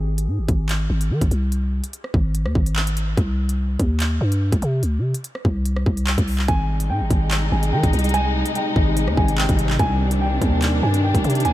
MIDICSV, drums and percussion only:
0, 0, Header, 1, 2, 480
1, 0, Start_track
1, 0, Tempo, 413793
1, 1762, Time_signature, 4, 2, 24, 8
1, 13376, End_track
2, 0, Start_track
2, 0, Title_t, "Drums"
2, 209, Note_on_c, 9, 42, 84
2, 325, Note_off_c, 9, 42, 0
2, 563, Note_on_c, 9, 36, 95
2, 563, Note_on_c, 9, 42, 83
2, 679, Note_off_c, 9, 36, 0
2, 679, Note_off_c, 9, 42, 0
2, 803, Note_on_c, 9, 39, 109
2, 803, Note_on_c, 9, 42, 79
2, 919, Note_off_c, 9, 39, 0
2, 919, Note_off_c, 9, 42, 0
2, 1170, Note_on_c, 9, 42, 74
2, 1286, Note_off_c, 9, 42, 0
2, 1409, Note_on_c, 9, 36, 93
2, 1410, Note_on_c, 9, 42, 82
2, 1523, Note_off_c, 9, 42, 0
2, 1523, Note_on_c, 9, 42, 74
2, 1525, Note_off_c, 9, 36, 0
2, 1639, Note_off_c, 9, 42, 0
2, 1763, Note_on_c, 9, 42, 67
2, 1879, Note_off_c, 9, 42, 0
2, 2130, Note_on_c, 9, 42, 86
2, 2242, Note_off_c, 9, 42, 0
2, 2242, Note_on_c, 9, 42, 80
2, 2358, Note_off_c, 9, 42, 0
2, 2369, Note_on_c, 9, 37, 69
2, 2483, Note_on_c, 9, 36, 100
2, 2485, Note_off_c, 9, 37, 0
2, 2599, Note_off_c, 9, 36, 0
2, 2722, Note_on_c, 9, 42, 78
2, 2838, Note_off_c, 9, 42, 0
2, 2849, Note_on_c, 9, 37, 90
2, 2962, Note_on_c, 9, 36, 88
2, 2965, Note_off_c, 9, 37, 0
2, 3078, Note_off_c, 9, 36, 0
2, 3090, Note_on_c, 9, 42, 65
2, 3203, Note_on_c, 9, 39, 106
2, 3206, Note_off_c, 9, 42, 0
2, 3319, Note_off_c, 9, 39, 0
2, 3330, Note_on_c, 9, 42, 80
2, 3443, Note_off_c, 9, 42, 0
2, 3443, Note_on_c, 9, 42, 80
2, 3559, Note_off_c, 9, 42, 0
2, 3682, Note_on_c, 9, 36, 111
2, 3683, Note_on_c, 9, 42, 70
2, 3798, Note_off_c, 9, 36, 0
2, 3799, Note_off_c, 9, 42, 0
2, 4050, Note_on_c, 9, 42, 83
2, 4166, Note_off_c, 9, 42, 0
2, 4402, Note_on_c, 9, 36, 99
2, 4402, Note_on_c, 9, 42, 87
2, 4518, Note_off_c, 9, 36, 0
2, 4518, Note_off_c, 9, 42, 0
2, 4642, Note_on_c, 9, 39, 114
2, 4642, Note_on_c, 9, 42, 81
2, 4758, Note_off_c, 9, 39, 0
2, 4758, Note_off_c, 9, 42, 0
2, 5010, Note_on_c, 9, 42, 70
2, 5126, Note_off_c, 9, 42, 0
2, 5248, Note_on_c, 9, 36, 92
2, 5249, Note_on_c, 9, 42, 79
2, 5361, Note_off_c, 9, 42, 0
2, 5361, Note_on_c, 9, 42, 72
2, 5364, Note_off_c, 9, 36, 0
2, 5477, Note_off_c, 9, 42, 0
2, 5601, Note_on_c, 9, 42, 71
2, 5717, Note_off_c, 9, 42, 0
2, 5968, Note_on_c, 9, 42, 83
2, 6082, Note_off_c, 9, 42, 0
2, 6082, Note_on_c, 9, 42, 79
2, 6198, Note_off_c, 9, 42, 0
2, 6207, Note_on_c, 9, 37, 71
2, 6321, Note_on_c, 9, 36, 99
2, 6323, Note_off_c, 9, 37, 0
2, 6437, Note_off_c, 9, 36, 0
2, 6560, Note_on_c, 9, 42, 82
2, 6676, Note_off_c, 9, 42, 0
2, 6687, Note_on_c, 9, 37, 90
2, 6801, Note_on_c, 9, 36, 91
2, 6803, Note_off_c, 9, 37, 0
2, 6917, Note_off_c, 9, 36, 0
2, 6927, Note_on_c, 9, 42, 55
2, 7041, Note_off_c, 9, 42, 0
2, 7041, Note_on_c, 9, 42, 56
2, 7042, Note_on_c, 9, 39, 107
2, 7157, Note_off_c, 9, 42, 0
2, 7158, Note_off_c, 9, 39, 0
2, 7168, Note_on_c, 9, 36, 92
2, 7168, Note_on_c, 9, 42, 80
2, 7280, Note_on_c, 9, 46, 57
2, 7284, Note_off_c, 9, 36, 0
2, 7284, Note_off_c, 9, 42, 0
2, 7396, Note_off_c, 9, 46, 0
2, 7408, Note_on_c, 9, 39, 68
2, 7521, Note_on_c, 9, 42, 71
2, 7522, Note_on_c, 9, 36, 109
2, 7524, Note_off_c, 9, 39, 0
2, 7637, Note_off_c, 9, 42, 0
2, 7638, Note_off_c, 9, 36, 0
2, 7889, Note_on_c, 9, 42, 86
2, 8005, Note_off_c, 9, 42, 0
2, 8242, Note_on_c, 9, 36, 100
2, 8242, Note_on_c, 9, 42, 85
2, 8358, Note_off_c, 9, 36, 0
2, 8358, Note_off_c, 9, 42, 0
2, 8481, Note_on_c, 9, 39, 115
2, 8481, Note_on_c, 9, 42, 84
2, 8597, Note_off_c, 9, 39, 0
2, 8597, Note_off_c, 9, 42, 0
2, 8849, Note_on_c, 9, 42, 72
2, 8965, Note_off_c, 9, 42, 0
2, 9088, Note_on_c, 9, 36, 98
2, 9089, Note_on_c, 9, 42, 83
2, 9202, Note_off_c, 9, 42, 0
2, 9202, Note_on_c, 9, 42, 65
2, 9204, Note_off_c, 9, 36, 0
2, 9266, Note_off_c, 9, 42, 0
2, 9266, Note_on_c, 9, 42, 63
2, 9329, Note_off_c, 9, 42, 0
2, 9329, Note_on_c, 9, 42, 60
2, 9386, Note_off_c, 9, 42, 0
2, 9386, Note_on_c, 9, 42, 61
2, 9443, Note_off_c, 9, 42, 0
2, 9443, Note_on_c, 9, 42, 71
2, 9559, Note_off_c, 9, 42, 0
2, 9809, Note_on_c, 9, 42, 86
2, 9922, Note_off_c, 9, 42, 0
2, 9922, Note_on_c, 9, 42, 81
2, 10038, Note_off_c, 9, 42, 0
2, 10162, Note_on_c, 9, 36, 103
2, 10278, Note_off_c, 9, 36, 0
2, 10402, Note_on_c, 9, 42, 82
2, 10518, Note_off_c, 9, 42, 0
2, 10529, Note_on_c, 9, 37, 92
2, 10642, Note_on_c, 9, 36, 93
2, 10645, Note_off_c, 9, 37, 0
2, 10758, Note_off_c, 9, 36, 0
2, 10769, Note_on_c, 9, 42, 66
2, 10881, Note_on_c, 9, 39, 111
2, 10885, Note_off_c, 9, 42, 0
2, 10997, Note_off_c, 9, 39, 0
2, 11008, Note_on_c, 9, 36, 92
2, 11008, Note_on_c, 9, 42, 81
2, 11121, Note_off_c, 9, 42, 0
2, 11121, Note_on_c, 9, 42, 81
2, 11124, Note_off_c, 9, 36, 0
2, 11237, Note_off_c, 9, 42, 0
2, 11247, Note_on_c, 9, 39, 72
2, 11361, Note_on_c, 9, 42, 69
2, 11362, Note_on_c, 9, 36, 113
2, 11363, Note_off_c, 9, 39, 0
2, 11477, Note_off_c, 9, 42, 0
2, 11478, Note_off_c, 9, 36, 0
2, 11728, Note_on_c, 9, 42, 86
2, 11844, Note_off_c, 9, 42, 0
2, 12082, Note_on_c, 9, 36, 100
2, 12082, Note_on_c, 9, 42, 82
2, 12198, Note_off_c, 9, 36, 0
2, 12198, Note_off_c, 9, 42, 0
2, 12322, Note_on_c, 9, 39, 116
2, 12322, Note_on_c, 9, 42, 83
2, 12438, Note_off_c, 9, 39, 0
2, 12438, Note_off_c, 9, 42, 0
2, 12689, Note_on_c, 9, 42, 73
2, 12805, Note_off_c, 9, 42, 0
2, 12929, Note_on_c, 9, 36, 97
2, 12930, Note_on_c, 9, 42, 83
2, 13042, Note_off_c, 9, 42, 0
2, 13042, Note_on_c, 9, 42, 62
2, 13045, Note_off_c, 9, 36, 0
2, 13105, Note_off_c, 9, 42, 0
2, 13105, Note_on_c, 9, 42, 65
2, 13169, Note_off_c, 9, 42, 0
2, 13169, Note_on_c, 9, 42, 62
2, 13226, Note_off_c, 9, 42, 0
2, 13226, Note_on_c, 9, 42, 62
2, 13282, Note_off_c, 9, 42, 0
2, 13282, Note_on_c, 9, 42, 68
2, 13376, Note_off_c, 9, 42, 0
2, 13376, End_track
0, 0, End_of_file